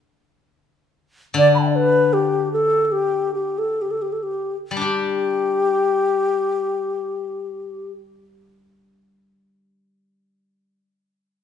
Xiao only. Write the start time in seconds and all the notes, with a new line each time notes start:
1.38 D5
1.55 A5 B5
1.63 G5
1.67 D5 E5
1.76 B4
2.13 G4
2.53 A4
2.85 A4
2.92 G4
3.35 G4
3.58 A4
3.82 G4
3.91 A4
4.02 G4
4.13 A4
4.23 G4
4.83 G4